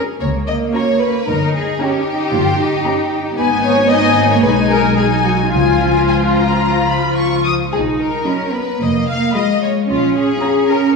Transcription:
0.20 double bass section C#2, cello section A#3, violin section C#5
0.47 violin section D#5
0.74 viola section C#4 F#4, violin section C#5 A#5
1.00 violin section B4
1.27 double bass section G1, cello section D#4, violin section A#4
1.55 violin section G#4
1.80 viola section C#4 D#4, cello section C#4, violin section G4 A#5
2.07 cello section D#4
2.33 double bass section G1, cello section F4
2.60 cello section D#4
2.85 viola section C#4 D#4, violin section A#5
3.36 double bass section G#1, viola section B3 D#4, cello section B3, violin section B4 G#5
3.63 violin section C#5
3.89 viola section B3 D#4, violin section D#5 G#5
4.16 viola section A#3
4.30 violin section C#5
4.42 double bass section B1, viola section G#3 D#4, cello section D#4, violin section B4 G#5
4.69 violin section A#4
4.95 viola section G#3 D#4, cello section D#4, violin section G#4 G#5
5.23 viola section F#3, violin section F#4
5.50 double bass section C#2, viola section F3 F4, cello section F4, violin section F4 G#5
6.07 violin section G#5
6.34 violin section A#5
6.88 violin section B5
7.17 violin section C#6
7.45 violin section D#6
7.71 double bass section B1, cello section D#4, violin section G#4
7.99 violin section A#4
8.26 viola section F#3 D#4, cello section C#4, violin section B5
8.53 cello section B3, violin section B4
8.79 double bass section F1, cello section A#3, violin section D#5
9.08 violin section F5
9.34 cello section G#3, viola section G#3 F4, violin section D#5 B5
9.62 violin section C#5
9.88 double bass section A#1, cello section C#4, violin section F4
10.15 violin section G#4
10.40 cello section C#4, viola section C#4 F4, violin section A#5
10.69 violin section A#4

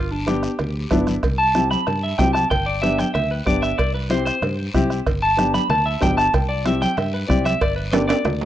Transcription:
Already playing: fingered electric bass G1, clean electric guitar F4
0.11 clean electric guitar D4, high conga
0.27 upright piano B3 D4 G4, clean electric guitar G4, bombo rim, high conga, short guiro
0.43 bombo rim, short guiro
0.59 fingered electric bass D2, bombo rim, cowbell, low conga, long guiro
0.76 high conga
0.91 fingered electric bass G1, upright piano B3 D4 E4, bombo low, bombo rim, high conga, low timbale, short guiro
1.07 bombo rim, high conga, short guiro
1.23 fingered electric bass C2, bombo low, bombo rim, cowbell, low conga, long guiro
1.38 clean electric guitar A5, high conga
1.55 upright piano C4 E4 G4, bombo rim, high conga, short guiro
1.71 clean electric guitar B5, bombo rim, high conga, short guiro
1.87 fingered electric bass G2, clean electric guitar A5, bombo rim, cowbell, low conga, long guiro
2.03 clean electric guitar E5, high conga
2.18 fingered electric bass C2, upright piano C4 E4 G4, clean electric guitar G5, bombo low, bombo rim, high conga, low timbale, short guiro
2.33 clean electric guitar A5, bombo rim, high conga, short guiro
2.50 fingered electric bass G1, clean electric guitar G5, bombo low, bombo rim, cowbell, low conga, long guiro
2.66 clean electric guitar D5, high conga
2.82 upright piano B3 D4 G4, clean electric guitar E5, bombo rim, high conga, short guiro
2.99 clean electric guitar G5, bombo rim, high conga, short guiro
3.14 fingered electric bass D2, clean electric guitar E5, bombo rim, cowbell, low conga, long guiro
3.31 clean electric guitar B4, high conga
3.46 fingered electric bass G1, upright piano B3 D4 G4, clean electric guitar D5, bombo low, bombo rim, high conga, short guiro
3.62 clean electric guitar E5, bombo rim, short guiro
3.78 fingered electric bass C2, clean electric guitar D5, bombo low, bombo rim, cowbell, long guiro
3.94 clean electric guitar B4, high conga
4.10 upright piano C4 E4 G4, clean electric guitar C5, bombo rim, high conga, short guiro
4.25 clean electric guitar C5, bombo rim, short guiro
4.42 fingered electric bass G2, bombo rim, cowbell, low conga, long guiro
4.59 high conga
4.74 fingered electric bass C2, upright piano C4 E4 G4, bombo low, bombo rim, high conga, low conga, short guiro
4.90 bombo rim, short guiro
5.06 fingered electric bass G1, bombo low, bombo rim, cowbell, low conga, long guiro
5.22 clean electric guitar A5, high conga
5.37 upright piano B3 D4 G4, bombo rim, high conga, short guiro
5.54 clean electric guitar B5, bombo rim, high conga, short guiro
5.69 fingered electric bass D2, clean electric guitar A5, bombo rim, cowbell, low conga, long guiro
5.86 clean electric guitar E5, high conga
6.01 fingered electric bass G1, upright piano B3 D4 G4, clean electric guitar G5, bombo low, bombo rim, high conga, low conga, low timbale, short guiro
6.17 clean electric guitar A5, bombo rim, short guiro
6.34 fingered electric bass C2, clean electric guitar G5, bombo low, bombo rim, cowbell, low conga, long guiro
6.49 clean electric guitar D5, high conga
6.65 upright piano C4 E4 G4, clean electric guitar E5, bombo rim, high conga, short guiro
6.82 clean electric guitar G5, bombo rim, high conga, short guiro
6.97 fingered electric bass G2, clean electric guitar E5, bombo rim, cowbell, low conga, long guiro
7.13 clean electric guitar B4, high conga
7.28 fingered electric bass C2, upright piano C4 E4 G4, clean electric guitar D5, bombo low, bombo rim, high conga, low conga, short guiro
7.45 clean electric guitar E5, bombo rim, high conga, short guiro
7.61 fingered electric bass G1, clean electric guitar D5, bombo low, bombo rim, cowbell, long guiro
7.76 clean electric guitar B4, high conga
7.92 upright piano B3 D4 G4, clean electric guitar D5, bombo rim, high conga, high timbale, short guiro
8.08 clean electric guitar D5, bombo rim, high timbale, short guiro
8.25 fingered electric bass D2, bombo rim, cowbell, low conga, low timbale, long guiro
8.40 high conga, low timbale

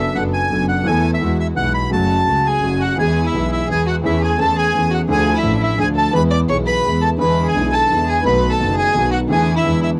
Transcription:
Already playing: double bass F#1, grand piano F#2 F#3 B3 D4 A4, string section B3 D4 A4, bandoneon E5
0.15 double bass F#1, grand piano F#2 F#3 B3 D4 A4, string section B3 D4 A4, bandoneon F#5
0.33 bandoneon G#5
0.49 double bass F#1, grand piano F#2 F#3 B3 D4, string section B3 D4 A4
0.53 grand piano A4
0.69 bandoneon F#5
0.83 grand piano E2 E3 A3 B3, double bass E2, string section B3 E4 A4, bandoneon G#5
0.88 grand piano A4
1.14 bandoneon E5
1.19 grand piano E2 E3 G#3 B3, double bass E2, string section G#3 E4 F#4
1.23 grand piano F#4
1.40 bandoneon E5
1.55 grand piano B1 B2 E3 G#3 B3, double bass B1, string section G#3 E4 F#4, bandoneon F#5
1.59 grand piano F#4
1.74 bandoneon B5
1.90 double bass F#1, grand piano F#2 C#3 F#3 A3 F#4, string section A3 C#4 F#4, bandoneon A5
2.25 grand piano C#2 C#3 F#3 A3 F#4, double bass C#2, string section A3 C#4 F#4
2.45 violin G#4, bandoneon G#5
2.61 double bass F#1, grand piano F#2 C#3 F#3 A3 F#4, string section A3 C#4 F#4
2.80 violin F#4, bandoneon F#5
2.96 double bass E2, grand piano E2 E3 G#3 B3, string section B3 E4 G#4, violin G#4, bandoneon G#5
3.01 grand piano G#4
3.25 violin E4, bandoneon E5
3.32 grand piano B1 B2 E3 G#3 B3 G#4, double bass B1, string section B3 E4 G#4
3.51 violin E4, bandoneon E5
3.67 grand piano E2 E3 G#3 B3 G#4, double bass E2, string section B3 E4 G#4, violin G#4
3.72 bandoneon G#5
3.87 violin F#4, bandoneon F#5
4.03 grand piano E2 E3 A3 C#4 G#4, double bass E2, string section A3 C#4 G#4, violin E4, bandoneon E5
4.22 violin G#4, bandoneon G#5
4.38 grand piano E2 E3 A3 C#4 G#4, double bass E2, string section A3 C#4 G#4, violin A4, bandoneon A5
4.56 violin G#4, bandoneon G#5
4.73 grand piano E2 E3 A3 C#4, double bass E2, string section A3 C#4 G#4
4.77 grand piano G#4
4.91 violin F#4, bandoneon F#5
5.07 grand piano D2 D3 F3 A3 D4, double bass D2, string section A3 D4 F4, violin G#4
5.11 grand piano A4, bandoneon G#5
5.35 violin E4, bandoneon E5
5.42 grand piano A1 A2 F3 A3 D4 A4, double bass A1, string section A3 D4 F4
5.61 violin E4, bandoneon E5
5.76 grand piano D2 D3 F3 A3 D4 A4, string section A3 D4 F4, violin G#4
5.80 double bass D2, bandoneon G#5
5.96 violin A4, bandoneon A5
6.13 grand piano E2 E3 G#3 B3 G#4, double bass E2, string section G#3 B3 E4, violin B4, bandoneon B5
6.30 violin D5, bandoneon D6
6.47 grand piano B1 B2 E3 G#3 B3, double bass B1, string section G#3 B3 E4, violin C#5, bandoneon C#6
6.51 grand piano G#4
6.66 violin B4, bandoneon B5
6.84 grand piano E2 E3 G#3 B3 G#4, double bass E2, string section G#3 B3 E4
7.01 violin A4, bandoneon A5
7.17 grand piano E2 D3 E3 G#3 B3 E4, double bass E2, string section G#3 D4 E4, violin B4, bandoneon B5
7.45 violin G#4, bandoneon G#5
7.54 double bass B1, grand piano B1 B2 D3 G#3 B3 E4, string section G#3 D4 E4
7.72 violin A4, bandoneon A5
7.89 double bass E2, grand piano E2 D3 E3 G#3 B3 E4, string section G#3 D4 E4
8.07 violin G#4, bandoneon G#5
8.23 grand piano B1 B2 D#3 A3 B3 F#4, double bass B1, string section A3 B3 D#4, violin B4, bandoneon B5
8.50 violin A4, bandoneon A5
8.59 double bass F#1, grand piano F#1 F#2 D#3 A3 B3, string section A3 B3 D#4
8.63 grand piano F#4
8.76 violin G#4, bandoneon G#5
8.93 grand piano B1 B2 D#3 A3 B3, double bass B1, string section A3 B3 D#4
8.97 grand piano F#4
9.11 violin F#4, bandoneon F#5
9.28 grand piano E2 D3 E3 A3 B3, double bass E2, string section A3 D4 E4, violin G#4
9.32 grand piano E4, bandoneon G#5
9.55 violin E4, bandoneon E5
9.63 grand piano E2 D3 E3 G#3 B3 E4, double bass E2, string section G#3 D4 E4
9.81 violin E4, bandoneon E5

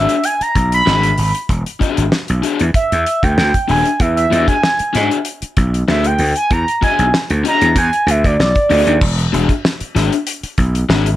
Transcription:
Already playing: overdriven electric guitar D4 F#4 G#4 E5, analog synth lead E5
0.09 closed hi-hat
0.24 analog synth lead G#5, closed hi-hat
0.41 analog synth lead A#5, muted slap bass stroke, closed hi-hat
0.56 slap bass B1, kick, closed hi-hat
0.72 analog synth lead B5, closed hi-hat
0.86 slap bass G#1, overdriven electric guitar D4 F#4 G#4 E5, snare
1.03 closed hi-hat
1.18 slap bass G#1, open hi-hat
1.35 closed hi-hat
1.49 slap bass E1, kick, closed hi-hat
1.66 closed hi-hat
1.80 overdriven electric guitar D4 F#4 G#4 E5, kick, closed hi-hat
1.97 slap bass G#1, closed hi-hat
2.12 snare
2.28 slap bass B1, closed hi-hat
2.42 overdriven electric guitar D4 F#4 G#4 E5, closed hi-hat
2.60 slap bass E2, closed hi-hat
2.74 analog synth lead E5, muted slap bass stroke, kick, closed hi-hat
2.92 slap bass E2, closed hi-hat
3.06 closed hi-hat
3.23 slap bass D2, analog synth lead G5, kick, closed hi-hat
3.38 slap bass D2, snare
3.54 kick, closed hi-hat
3.68 slap bass D#1, overdriven electric guitar D4 F#4 G#4 E5, analog synth lead G#5, open hi-hat
3.85 closed hi-hat
4.00 slap bass E2, analog synth lead E5, kick, closed hi-hat
4.16 analog synth lead E5, closed hi-hat
4.30 slap bass E2, overdriven electric guitar D4 F#4 G#4 E5, closed hi-hat
4.48 analog synth lead G#5, kick, closed hi-hat
4.63 snare
4.79 muted slap bass stroke, closed hi-hat
4.93 slap bass G#2, overdriven electric guitar D4 F#4 G#4 E5, snare, closed hi-hat
5.11 closed hi-hat
5.25 closed hi-hat
5.42 muted slap bass stroke, closed hi-hat
5.57 slap bass B1, kick, closed hi-hat
5.74 closed hi-hat
5.88 slap bass D2, overdriven electric guitar D4 F#4 G#4 E5, analog synth lead E5, snare
6.04 analog synth lead G5, closed hi-hat
6.18 slap bass D2, open hi-hat
6.36 analog synth lead G#5, closed hi-hat
6.51 slap bass E2, analog synth lead A#5, kick, closed hi-hat
6.68 closed hi-hat
6.81 overdriven electric guitar D4 F#4 G#4 E5, analog synth lead G#5, kick, closed hi-hat
6.99 slap bass B1, closed hi-hat
7.14 snare
7.30 slap bass D2, closed hi-hat
7.44 overdriven electric guitar D4 F#4 G#4 E5, closed hi-hat
7.48 analog synth lead A#5
7.61 slap bass E2, closed hi-hat
7.76 slap bass E2, analog synth lead G#5, kick, closed hi-hat
7.93 closed hi-hat
8.07 slap bass D2, analog synth lead E5, closed hi-hat
8.24 slap bass D2, analog synth lead D5, kick, closed hi-hat
8.39 slap bass B1, analog synth lead D5, snare
8.55 kick, closed hi-hat
8.70 slap bass D2, overdriven electric guitar D4 F#4 G#4 E5, open hi-hat
8.87 slap bass D#2, closed hi-hat
9.01 slap bass E1, kick, crash
9.19 closed hi-hat
9.32 slap bass E1, overdriven electric guitar D4 F#4 G#4 E5, closed hi-hat
9.49 kick, closed hi-hat
9.65 snare
9.80 muted slap bass stroke, closed hi-hat
9.95 slap bass G#1, overdriven electric guitar D4 F#4 G#4 E5, snare, closed hi-hat
10.13 closed hi-hat
10.27 closed hi-hat
10.43 muted slap bass stroke, closed hi-hat
10.58 slap bass B1, kick, closed hi-hat
10.75 closed hi-hat
10.89 slap bass G#1, overdriven electric guitar D4 F#4 G#4 E5, snare
11.06 closed hi-hat

